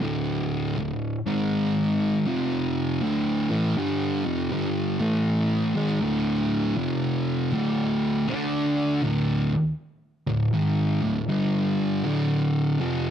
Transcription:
0.01 0.76 D2 loud
0.01 0.76 A2 loud
0.01 0.77 D3 loud
0.78 1.16 D2 medium
0.78 1.16 A2 medium
1.26 2.26 G#2 medium
1.26 2.27 D#3 loud
1.26 2.27 G#3 loud
2.26 3.01 F2 medium
2.26 3.01 C3 loud
2.26 3.02 F3 loud
3.02 3.49 D2 medium
3.02 3.49 A2 loud
3.02 3.50 D3 loud
3.50 3.76 A2 medium
3.50 3.76 E3 loud
3.50 3.76 A3 loud
3.77 4.24 G2 medium
3.77 4.24 D3 loud
3.77 4.25 G3 loud
4.25 4.50 F2 loud
4.25 4.51 C3 loud
4.25 4.52 F3 loud
4.51 4.98 G2 medium
4.51 4.99 D3 loud
4.51 4.99 G3 loud
4.99 5.74 A2 medium
4.99 5.74 E3 loud
4.99 5.74 A3 loud
5.75 6.00 G#2 medium
5.75 6.01 D#3 medium
5.75 6.02 G#3 loud
6.01 6.76 D2 medium
6.01 6.77 A2 loud
6.01 6.77 D3 loud
6.77 7.51 F2 medium
6.77 7.52 C3 medium
6.77 7.52 F3 medium
7.52 8.27 D2 medium
7.52 8.28 A2 loud
7.52 8.28 D3 medium
8.28 9.02 D3 medium
8.28 9.02 A3 loud
8.28 9.03 D4 loud
9.02 9.50 D2 medium
9.02 9.50 A2 loud
9.02 9.51 D3 loud
10.27 10.48 D2 medium
10.27 10.48 A2 medium
10.54 11.01 G#2 medium
10.54 11.01 D#3 loud
10.54 11.01 G#3 loud
11.02 11.23 D2 medium
11.02 11.24 A2 medium
11.29 12.03 G2 loud
11.29 12.04 D3 loud
11.29 12.04 G3 loud
12.04 12.79 D2 medium
12.04 12.79 A2 medium
12.04 12.79 D3 loud
12.79 13.10 F2 medium
12.79 13.10 C3 loud
12.79 13.10 F3 loud

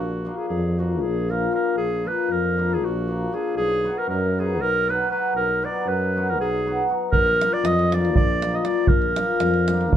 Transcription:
0.00 0.28 A#1 medium
0.00 0.39 F#4 medium
0.25 0.77 F3 medium
0.25 0.45 A#3 soft
0.25 0.46 D4 medium
0.25 0.46 F4 medium
0.38 0.47 G#4 medium
0.48 1.06 F2 loud
0.48 0.81 G#4 medium
0.79 1.28 F3 medium
0.79 0.99 A#3 soft
0.79 1.00 D4 soft
0.79 1.00 F4 medium
0.79 1.03 F#4 medium
1.01 1.48 A#1 loud
1.01 1.32 G#4 medium
1.29 1.50 F3 medium
1.29 1.49 A#3 soft
1.29 1.50 D4 soft
1.29 1.50 F4 medium
1.29 1.54 A#4 medium
1.51 2.03 F3 medium
1.51 1.72 A#3 soft
1.51 1.72 D4 soft
1.51 1.73 F4 medium
1.51 1.76 A#4 medium
1.77 2.08 A#1 medium
1.77 2.09 G#4 medium
2.04 2.56 F3 soft
2.04 2.25 A#3 medium
2.04 2.25 D4 medium
2.04 2.26 F4 medium
2.04 2.33 B4 medium
2.29 2.84 F2 medium
2.29 2.75 A#4 loud
2.57 3.06 F3 medium
2.57 2.78 A#3 medium
2.57 2.78 D4 medium
2.57 2.79 F4 medium
2.74 2.87 G#4 medium
2.83 3.26 A#1 loud
2.83 3.36 F#4 medium
3.07 3.31 F3 medium
3.07 3.28 A#3 soft
3.07 3.29 D4 soft
3.07 3.29 F4 medium
3.32 3.61 F3 medium
3.32 3.52 A#3 soft
3.32 3.52 D4 medium
3.32 3.53 F4 medium
3.32 3.57 G#4 medium
3.56 3.88 B1 medium
3.56 4.00 G#4 loud
3.84 4.37 F#3 medium
3.84 4.04 B3 medium
3.84 4.05 D#4 soft
3.84 4.05 F#4 medium
3.98 4.09 A#4 medium
4.08 4.63 F#2 loud
4.08 4.41 A#4 medium
4.38 4.87 F#3 soft
4.38 4.58 B3 medium
4.38 4.58 D#4 medium
4.38 4.59 F#4 medium
4.38 4.63 G#4 medium
4.61 5.05 B1 medium
4.61 4.91 A#4 loud
4.88 5.09 F#3 medium
4.88 5.08 B3 medium
4.88 5.08 D#4 medium
4.88 5.08 F#4 medium
4.88 5.11 B4 medium
5.10 5.61 F#3 medium
5.10 5.30 B3 soft
5.10 5.31 D#4 soft
5.10 5.31 F#4 medium
5.10 5.33 B4 medium
5.34 5.66 B1 medium
5.34 5.66 A#4 loud
5.62 6.14 F#3 medium
5.62 5.83 B3 medium
5.62 5.83 D#4 medium
5.62 5.84 F#4 medium
5.62 5.90 D5 medium
5.86 6.41 F#2 medium
5.86 6.30 B4 medium
6.16 6.65 F#3 medium
6.16 6.36 B3 soft
6.16 6.36 D#4 medium
6.16 6.37 F#4 medium
6.29 6.40 A#4 medium
6.39 6.83 B1 medium
6.39 6.86 G#4 medium
6.66 6.87 F#3 soft
6.66 6.86 B3 soft
6.66 6.86 D#4 medium
6.66 6.86 F#4 medium
6.88 7.17 F#3 soft
6.88 7.08 B3 soft
6.88 7.08 D#4 soft
6.88 7.09 F#4 medium
7.12 7.43 A#1 medium
7.12 7.55 A#4 loud
7.12 davul low medium
7.27 davul high soft
7.40 7.91 F3 medium
7.40 7.61 A#3 medium
7.40 7.61 D4 medium
7.40 7.61 F4 medium
7.40 davul high medium
7.53 7.67 D5 loud
7.64 8.18 F2 loud
7.64 7.95 D#5 medium
7.64 davul high medium
7.79 davul high soft
7.92 8.41 F3 medium
7.92 8.13 A#3 medium
7.92 8.13 D4 medium
7.92 8.14 F4 medium
7.92 8.16 D5 medium
7.92 davul high medium
8.05 davul high soft
8.16 8.60 A#1 loud
8.16 8.56 D5 loud
8.16 davul low loud
8.42 8.64 F3 medium
8.42 8.62 A#3 medium
8.42 8.62 D4 medium
8.42 8.63 F4 medium
8.42 davul high medium
8.55 8.66 D#5 medium
8.65 9.16 F3 medium
8.65 8.85 A#3 soft
8.65 8.86 D4 soft
8.65 8.86 F4 medium
8.65 8.90 D5 loud
8.65 davul high medium
8.87 9.20 A#1 medium
8.87 9.97 A#4 medium
8.87 davul low medium
9.02 davul high soft
9.16 9.68 F3 medium
9.16 9.38 A#3 soft
9.16 9.38 D4 medium
9.16 9.38 F4 medium
9.16 davul high medium
9.40 9.95 F2 loud
9.40 davul high medium
9.54 davul high soft
9.68 9.97 F3 medium
9.68 9.89 A#3 medium
9.68 9.90 D4 medium
9.68 9.90 F4 medium
9.68 davul high medium
9.81 davul high soft
9.93 9.97 A#1 medium
9.93 davul low loud

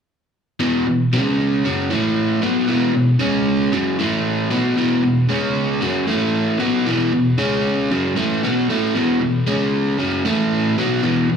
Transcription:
0.60 0.85 E2 medium
0.60 0.85 B2 medium
0.60 0.86 E3 medium
0.87 1.07 E2 medium
0.87 1.07 B2 medium
1.13 1.64 C#3 medium
1.13 1.64 G#3 loud
1.13 1.64 C#4 medium
1.64 1.90 F#2 medium
1.64 1.90 C#3 loud
1.64 1.90 F#3 medium
1.90 2.42 A2 loud
1.90 2.42 E3 loud
1.90 2.42 A3 loud
2.42 2.68 B2 medium
2.42 2.68 F#3 medium
2.42 2.68 B3 medium
2.68 2.93 E2 medium
2.68 2.93 B2 medium
2.68 2.94 E3 medium
2.94 3.15 E2 medium
2.94 3.15 B2 medium
3.19 3.71 C#3 medium
3.19 3.72 G#3 medium
3.19 3.72 C#4 loud
3.72 3.98 F#2 medium
3.72 3.98 C#3 loud
3.72 3.98 F#3 medium
3.99 4.50 A2 medium
3.99 4.50 E3 medium
3.99 4.51 A3 loud
4.50 4.76 B2 medium
4.50 4.76 F#3 medium
4.50 4.77 B3 loud
4.76 5.02 E2 medium
4.76 5.02 B2 medium
4.76 5.03 E3 medium
5.03 5.24 E2 medium
5.03 5.24 B2 medium
5.29 5.80 C#3 medium
5.29 5.81 G#3 medium
5.29 5.81 C#4 loud
5.81 6.07 F#2 medium
5.81 6.06 C#3 medium
5.81 6.07 F#3 loud
6.07 6.58 A2 medium
6.07 6.59 E3 medium
6.07 6.59 A3 loud
6.59 6.85 B2 medium
6.59 6.85 F#3 medium
6.59 6.85 B3 loud
6.86 7.11 E2 medium
6.86 7.12 B2 medium
6.86 7.11 E3 medium
7.13 7.33 E2 medium
7.13 7.33 B2 medium
7.38 7.89 C#3 medium
7.38 7.90 G#3 medium
7.38 7.90 C#4 loud
7.91 8.16 F#2 medium
7.91 8.15 C#3 medium
7.91 8.16 F#3 medium
8.16 8.41 A2 medium
8.16 8.42 E3 loud
8.16 8.42 A3 loud
8.43 8.68 B2 medium
8.43 8.69 F#3 loud
8.43 8.69 B3 loud
8.69 8.94 A2 medium
8.69 8.94 E3 medium
8.69 8.94 A3 loud
8.95 9.19 E2 medium
8.95 9.20 B2 medium
8.95 9.20 E3 medium
9.20 9.41 E2 medium
9.20 9.42 B2 medium
9.47 9.98 C#3 medium
9.47 9.98 G#3 medium
9.47 9.98 C#4 medium
9.98 10.24 F#2 medium
9.98 10.24 C#3 medium
9.98 10.24 F#3 medium
10.25 10.77 A2 medium
10.25 10.77 E3 loud
10.25 10.77 A3 loud
10.78 11.02 B2 medium
10.78 11.03 F#3 medium
10.78 11.03 B3 medium
11.03 11.28 E2 medium
11.03 11.29 B2 medium
11.03 11.29 E3 loud
11.30 11.37 E2 medium
11.30 11.37 B2 medium

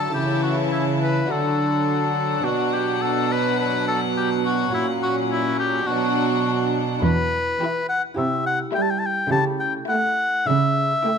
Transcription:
0.00 0.10 D3 soft
0.00 0.10 F#3 soft
0.00 0.13 A4 medium
0.00 1.25 A5 medium
0.10 1.24 A3 soft
0.10 1.24 E4 soft
0.10 1.27 E4 soft
0.14 1.25 C#3 soft
0.14 1.29 C#3 medium
0.14 1.29 E3 soft
0.14 0.42 G4 medium
0.43 0.56 F#4 soft
0.72 0.85 E4 medium
1.02 1.33 B4 medium
1.26 2.40 D3 soft
1.26 2.42 D3 soft
1.26 5.84 F#3 medium
1.26 2.39 D4 soft
1.26 4.74 D4 soft
1.26 2.40 F#4 soft
1.26 5.87 F#5 medium
1.31 2.46 A4 medium
2.42 4.70 B2 soft
2.42 4.68 D4 soft
2.42 4.69 F#4 soft
2.42 2.75 F#4 medium
2.46 4.70 B2 medium
2.74 3.03 G4 medium
3.02 3.33 A4 medium
3.32 3.59 B4 medium
3.60 3.87 B4 medium
3.88 4.01 A4 medium
4.17 4.30 G4 medium
4.45 4.73 F#4 medium
4.70 5.84 A#2 soft
4.70 5.86 A#2 medium
4.70 5.83 C#4 soft
4.70 5.87 C#4 soft
4.70 4.87 E4 medium
4.70 5.84 F#4 soft
5.03 5.16 F#4 medium
5.31 5.59 E4 medium
5.60 5.89 G4 medium
5.85 7.01 B2 medium
5.85 6.99 B2 soft
5.85 7.01 F#3 medium
5.85 6.98 D4 soft
5.85 7.00 D4 medium
5.85 6.99 F#4 soft
5.85 6.75 F#4 medium
5.85 7.01 F#5 medium
7.00 7.48 E2 soft
7.00 7.48 E2 medium
7.00 8.12 E4 soft
7.00 7.85 B4 medium
7.61 8.03 E3 medium
7.61 8.03 E4 medium
7.61 8.03 G5 medium
7.89 8.02 F#5 medium
8.14 8.63 C3 medium
8.14 8.62 C3 soft
8.14 9.27 E4 soft
8.14 9.28 G4 soft
8.14 8.46 E5 medium
8.46 8.59 F#5 medium
8.73 9.18 G3 medium
8.73 9.17 E4 medium
8.73 9.17 G5 medium
8.73 8.83 G5 medium
8.82 8.92 A5 medium
8.90 9.01 G5 medium
8.99 9.08 A5 medium
9.06 9.31 G5 medium
9.28 9.77 C#3 medium
9.28 11.18 A3 soft
9.28 11.18 E4 soft
9.28 11.18 G4 soft
9.28 9.45 A5 medium
9.32 9.77 C#3 soft
9.60 9.73 G5 medium
9.88 10.32 A3 medium
9.88 10.32 E4 medium
9.88 10.48 F#5 medium
9.88 10.32 G5 medium
10.47 10.93 C#3 medium
10.47 10.92 C#3 medium
10.47 11.18 E5 medium
11.04 11.18 A3 medium
11.04 11.18 E4 medium
11.04 11.18 G5 medium

